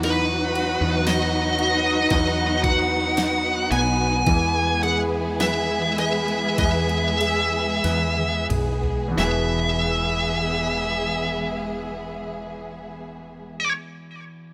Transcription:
<<
  \new Staff \with { instrumentName = "Lead electric guitar" } { \time 4/4 \key e \major \tempo 4 = 49 b'4 dis''4 dis''8 fis''4 gis''8~ | gis''8 fis''8 e''8 e''8 e''4. r8 | e''1 | }
  \new Staff \with { instrumentName = "Violin section" } { \time 4/4 \key e \major <dis' b' fis''>1 | <e' b' gis''>1 | <b gis' e''>1 | }
  \new Staff \with { instrumentName = "Grand piano" } { \time 4/4 \key e \major <e dis'>8 fis'8 dis'8 fis'8 dis'8 fis'8 dis'8 b8 | e8 gis'8 b'8 gis'8 b'8 gis'8 b'8 gis'8 | <e, b, e b gis' b'>1 | }
  \new Staff \with { instrumentName = "String section" } { \time 4/4 \key e \major << { <fis dis' fis'>1 | <e gis gis'>1 | <e gis b gis'>1 | } \\ { b1~ | b1 | r1 | } >> }
  \new Staff \with { instrumentName = "Fretless electric bass" } { \clef bass \time 4/4 \key e \major e,8. e,4~ e,16 e,4. b,,8 | e,2 e,4 e,8 b,,8 | e,,1 | }
  \new DrumStaff \with { instrumentName = "Drums" } \drummode { \time 4/4 cymr8 cymr8 <cymr sn>8 cymr8 <bd cymr>8 <bd cymr>8 <cymr sn>8 cymr8 | <bd cymr>8 cymr8 <cymr sn>8 cymr16 cymr16 <bd cymr>16 cymr16 cymr8 <cymr sn>16 tommh16 <cymr toml>16 tomfh16 | sn4 r4 r4 r4 | }
>>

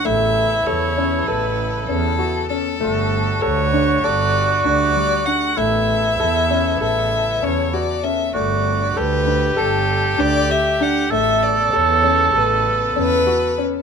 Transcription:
<<
  \new Staff \with { instrumentName = "Violin" } { \time 9/8 \key a \mixolydian \tempo 4. = 65 e''4 cis''4 b'4 a'4 a'8~ | a'4 cis''4 d''4 d''4 fis''8 | e''2 e''4 cis''8 d''8 e''8 | d''4 b'4 a'4 d''8 e''8 fis''8 |
e''8 d''8 cis''4 b'4 b'4 r8 | }
  \new Staff \with { instrumentName = "Oboe" } { \time 9/8 \key a \mixolydian e'1 r8 | fis'1~ fis'8 | e'1 r8 | fis'4 g'2.~ g'8 |
a'1 r8 | }
  \new Staff \with { instrumentName = "Grand piano" } { \time 9/8 \key a \mixolydian a4 a'8 cis'8 a'4 cis'8 fis'8 cis'8 | a4 a'8 d'8 a'4 d'8 g8 d'8 | a4 a'8 cis'8 a'4 cis'8 fis'8 cis'8 | a4 a'8 d'8 a'4 d'8 g'8 d'8 |
a4 a'8 cis'8 a'4 cis'8 fis'8 cis'8 | }
  \new Staff \with { instrumentName = "String section" } { \time 9/8 \key a \mixolydian <cis b a'>1~ <cis b a'>8 | <d g a>1~ <d g a>8 | <cis b a'>1~ <cis b a'>8 | <d g a>1~ <d g a>8 |
<cis b a'>1~ <cis b a'>8 | }
  \new Staff \with { instrumentName = "Double bass" } { \clef bass \time 9/8 \key a \mixolydian a,,4 e,4 a,,4 e,8 r4 | g,,4 d,4 g,,4 d,8 r4 | a,,4 e,4 a,,4 e,8 r4 | g,,4 d,4 g,,4 d,8 r4 |
a,,4 e,4 a,,4 e,8 r4 | }
>>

